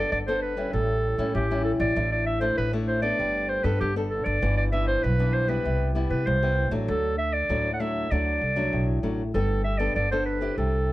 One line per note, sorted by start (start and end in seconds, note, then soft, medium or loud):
0.00 0.22 B3 medium
0.00 0.22 D4 medium
0.00 0.22 A4 medium
0.00 0.10 D5 medium
0.12 0.64 G1 medium
0.12 0.70 D3 medium
0.12 0.19 D5 medium
0.27 0.53 B3 medium
0.27 0.54 D4 medium
0.27 0.54 A4 medium
0.27 0.41 C5 medium
0.42 0.71 B4 medium
0.57 1.14 G3 medium
0.57 1.14 C#4 medium
0.57 1.14 E4 medium
0.73 1.13 A1 medium
0.73 1.32 A2 medium
0.73 1.31 A4 medium
1.18 1.32 A2 medium
1.18 1.45 G3 medium
1.18 1.45 C#4 medium
1.18 1.45 E4 medium
1.35 1.74 A1 medium
1.35 1.93 E3 medium
1.35 1.63 G4 medium
1.51 1.92 G3 medium
1.51 1.92 C#4 medium
1.51 1.92 E4 medium
1.65 1.72 A4 medium
1.80 1.93 A1 medium
1.80 2.09 D5 medium
1.96 2.49 A1 medium
1.96 2.55 A2 medium
1.96 2.37 A3 medium
1.96 2.37 D4 soft
1.96 2.38 E4 medium
2.12 2.26 D5 medium
2.26 2.40 E5 medium
2.41 2.68 A3 medium
2.41 2.68 D4 medium
2.41 2.68 E4 medium
2.41 2.56 C5 medium
2.58 3.10 A1 medium
2.58 3.16 A2 soft
2.58 2.72 B4 medium
2.73 2.99 A3 medium
2.73 2.99 D4 medium
2.73 2.99 E4 medium
2.88 3.02 C5 medium
3.02 3.60 B3 medium
3.02 3.60 D4 medium
3.02 3.60 A4 medium
3.02 3.51 D5 medium
3.19 3.59 G1 medium
3.19 3.77 G3 medium
3.49 3.66 C5 medium
3.64 3.78 G2 medium
3.64 3.90 B3 medium
3.64 3.91 D4 medium
3.64 3.91 A4 medium
3.64 3.80 B4 medium
3.81 4.20 G1 medium
3.81 4.39 D3 medium
3.81 3.94 G4 medium
3.96 4.37 B3 medium
3.96 4.38 D4 medium
3.96 4.38 A4 medium
4.10 4.26 A4 medium
4.25 4.39 G1 medium
4.25 4.56 D5 medium
4.42 4.95 G1 medium
4.42 5.00 G2 medium
4.42 4.68 E3 medium
4.42 4.68 B3 medium
4.42 4.68 D4 medium
4.57 4.64 D5 medium
4.72 5.01 E3 medium
4.72 5.02 B3 medium
4.72 5.02 D4 medium
4.72 4.87 E5 medium
4.87 5.05 C5 medium
5.03 5.56 B1 medium
5.03 5.62 G2 medium
5.03 5.35 B4 medium
5.19 5.45 E3 medium
5.19 5.45 B3 medium
5.19 5.45 D4 medium
5.34 5.51 C5 medium
5.48 5.90 G3 medium
5.48 5.90 B3 medium
5.48 5.91 E4 medium
5.48 5.96 B4 medium
5.65 6.05 C2 medium
5.65 6.23 C3 medium
5.95 6.37 G3 medium
5.95 6.37 B3 medium
5.95 6.37 E4 medium
6.10 6.24 C3 medium
6.10 6.28 B4 medium
6.27 6.66 C2 medium
6.27 6.85 G2 medium
6.27 6.73 C5 medium
6.43 6.68 G3 medium
6.43 6.68 B3 medium
6.43 6.68 E4 medium
6.71 6.85 A1 medium
6.71 7.13 F#3 medium
6.71 7.13 A3 medium
6.71 7.14 D4 medium
6.88 7.41 D2 medium
6.88 7.47 D3 medium
6.88 7.17 A4 medium
7.18 7.35 E5 medium
7.33 7.73 D5 medium
7.49 8.02 D2 medium
7.49 8.08 A2 medium
7.49 7.68 F#3 medium
7.49 7.68 A3 medium
7.49 7.68 D4 medium
7.74 7.82 F#5 medium
7.80 8.06 F#3 medium
7.80 8.06 A3 medium
7.80 8.06 D4 medium
7.80 8.13 E5 medium
8.11 8.37 D2 medium
8.11 8.70 D3 medium
8.11 8.40 F#3 medium
8.11 8.40 A3 soft
8.11 8.41 D4 medium
8.11 9.04 D5 medium
8.41 8.69 C2 medium
8.56 8.98 F#3 medium
8.56 8.98 A3 medium
8.56 8.98 D4 medium
8.73 9.01 B1 medium
8.73 9.31 A2 medium
9.03 9.31 A1 medium
9.03 9.21 F#3 medium
9.03 9.22 A3 medium
9.03 9.22 D4 medium
9.34 9.87 G1 medium
9.34 9.93 G3 medium
9.34 9.63 B3 medium
9.34 9.63 D4 soft
9.34 9.63 A4 medium
9.34 9.64 A4 medium
9.64 9.80 E5 medium
9.78 10.06 B3 medium
9.78 10.06 D4 medium
9.78 10.06 A4 medium
9.78 9.95 D5 medium
9.96 10.48 G1 medium
9.96 10.55 D3 medium
9.96 10.10 D5 medium
10.11 10.38 B3 medium
10.11 10.38 D4 medium
10.11 10.38 A4 medium
10.11 10.25 C5 medium
10.26 10.55 B4 medium
10.41 10.93 C4 medium
10.41 10.93 E4 medium
10.41 10.93 G4 medium
10.58 10.93 C2 medium
10.58 10.93 C3 medium
10.58 10.93 A4 medium